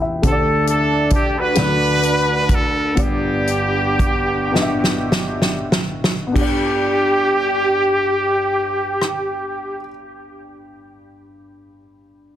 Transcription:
0.00 0.20 E2 soft
0.00 0.19 E3 medium
0.00 0.25 B3 medium
0.00 0.25 E4 medium
0.00 0.25 G4 medium
0.00 0.02 E5 medium
0.00 0.43 E5 medium
0.00 0.25 G5 medium
0.22 1.53 D2 medium
0.22 1.53 D3 medium
0.22 1.22 A3 medium
0.22 1.23 D4 medium
0.22 1.37 D4 medium
0.22 1.24 G4 medium
0.22 0.31 C5 medium
0.22 kick medium
0.22 closed hi-hat medium
0.26 0.65 A4 medium
0.32 1.27 D5 medium
0.67 1.09 A4 medium
0.67 closed hi-hat soft
1.10 1.35 G4 medium
1.10 kick medium
1.10 closed hi-hat soft
1.38 2.71 D4 medium
1.38 2.71 F#4 medium
1.38 2.51 B4 loud
1.55 2.93 D2 medium
1.55 2.93 D3 medium
1.55 2.61 A3 medium
1.55 2.61 D4 medium
1.55 1.64 E4 soft
1.55 2.63 D5 medium
1.55 snare medium
1.55 closed hi-hat medium
1.64 2.65 F#4 medium
2.03 closed hi-hat soft
2.49 2.99 A4 medium
2.49 kick medium
2.49 closed hi-hat soft
2.95 6.31 G1 soft
2.95 6.31 G2 medium
2.95 4.12 B3 medium
2.95 4.13 D4 medium
2.95 4.13 G4 medium
2.95 4.14 D5 medium
2.95 kick medium
2.95 closed hi-hat medium
3.00 5.69 B3 medium
3.00 5.69 D4 medium
3.00 5.69 G4 medium
3.47 closed hi-hat soft
3.99 kick medium
3.99 closed hi-hat soft
4.51 5.86 B3 medium
4.51 5.87 D4 medium
4.51 5.88 G4 medium
4.51 4.63 D#5 medium
4.55 snare soft
4.62 5.92 E5 medium
4.84 snare soft
5.12 snare medium
5.42 snare medium
5.72 snare medium
6.04 snare medium
6.27 9.76 B3 medium
6.32 9.83 G2 medium
6.32 9.81 D4 medium
6.32 9.84 G4 medium
6.32 kick medium
6.36 9.86 G4 medium
6.36 crash medium
6.41 9.90 D5 medium
9.02 cross-stick soft

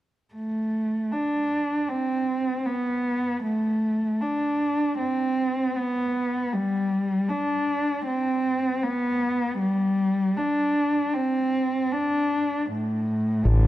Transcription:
0.34 1.13 A3 soft
1.12 1.90 D4 soft
1.89 2.67 C4 soft
2.66 3.43 B3 soft
3.43 4.22 A3 soft
4.21 4.98 D4 soft
4.98 5.77 C4 medium
5.76 6.54 B3 medium
6.53 7.30 G3 medium
7.29 8.05 D4 medium
8.06 8.84 C4 medium
8.83 9.59 B3 medium
9.59 10.38 G3 medium
10.37 11.15 D4 medium
11.14 11.93 C4 medium
11.92 12.69 D4 medium
12.71 13.49 A2 soft
13.45 13.67 A1 medium
13.45 13.67 D3 medium

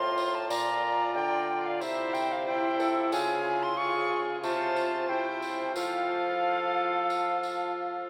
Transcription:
0.00 0.49 A2 medium
0.00 0.49 F4 medium
0.00 0.52 C5 medium
0.00 0.36 C6 loud
0.18 tambourine medium
0.35 0.49 A5 loud
0.50 1.18 A#2 medium
0.50 1.83 F4 medium
0.50 1.82 D5 medium
0.50 1.14 A#5 loud
0.50 tambourine medium
1.15 1.81 D3 medium
1.15 1.68 G5 loud
1.66 1.81 F5 medium
1.81 3.10 C3 medium
1.81 2.47 E4 medium
1.81 2.46 C5 medium
1.81 2.15 E5 loud
1.81 tambourine medium
2.14 2.33 G5 loud
2.14 tambourine medium
2.32 2.46 F5 loud
2.47 3.14 E4 medium
2.47 2.81 C5 medium
2.47 3.11 G5 loud
2.80 3.14 A4 medium
2.80 tambourine medium
3.12 4.14 C#3 loud
3.12 3.77 F4 medium
3.12 3.78 G#4 medium
3.12 3.64 G#5 loud
3.12 tambourine medium
3.63 3.79 C6 loud
3.77 4.42 F4 medium
3.77 4.42 G#4 medium
3.77 4.20 C#6 loud
4.44 5.05 C3 medium
4.44 5.11 F4 medium
4.44 5.08 C5 medium
4.44 5.11 A5 loud
4.44 tambourine medium
4.76 tambourine soft
5.09 5.75 C3 medium
5.09 5.76 E4 medium
5.09 5.78 C5 medium
5.09 5.75 G5 loud
5.42 tambourine soft
5.76 8.07 F3 medium
5.76 8.10 F4 medium
5.76 8.10 A4 medium
5.76 7.72 F5 loud
5.76 tambourine medium
7.10 tambourine medium
7.43 tambourine medium

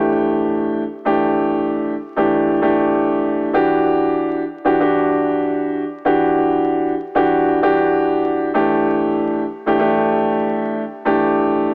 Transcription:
0.00 0.81 E3 medium
0.00 0.81 A3 medium
0.00 0.81 D4 medium
0.00 0.82 G4 loud
1.05 1.92 E3 medium
1.05 1.92 A3 medium
1.05 1.93 D4 medium
1.05 1.93 G4 loud
2.16 2.58 E3 loud
2.16 2.59 A3 medium
2.16 2.59 D4 medium
2.16 2.59 G4 loud
2.62 3.48 E3 medium
2.62 3.49 A3 medium
2.62 3.49 D4 medium
2.62 3.49 G4 loud
3.53 4.41 E3 medium
3.53 4.41 D4 medium
3.53 4.42 F#4 medium
3.53 4.42 G4 loud
4.65 4.78 E3 medium
4.65 4.79 D4 medium
4.65 4.79 F#4 medium
4.65 4.80 G4 loud
4.80 5.81 E3 medium
4.80 5.82 D4 medium
4.80 5.82 F#4 medium
4.80 5.82 G4 loud
6.05 6.92 E3 medium
6.05 6.92 D4 medium
6.05 6.92 F#4 medium
6.05 6.93 G4 loud
7.15 7.58 E3 medium
7.15 7.58 D4 medium
7.15 7.58 F#4 medium
7.15 7.58 G4 loud
7.62 8.49 E3 medium
7.62 8.49 D4 medium
7.62 8.49 F#4 medium
7.62 8.49 G4 loud
8.54 9.42 E3 medium
8.54 9.42 A3 medium
8.54 9.42 D4 medium
8.54 9.42 G4 loud
9.66 9.78 E3 medium
9.66 9.78 A3 medium
9.66 9.78 D4 medium
9.66 9.79 G4 loud
9.79 10.81 E3 medium
9.79 10.81 A3 medium
9.79 10.81 D4 medium
9.79 10.82 G4 loud
11.05 11.74 E3 medium
11.05 11.74 A3 medium
11.05 11.74 D4 medium
11.05 11.74 G4 loud

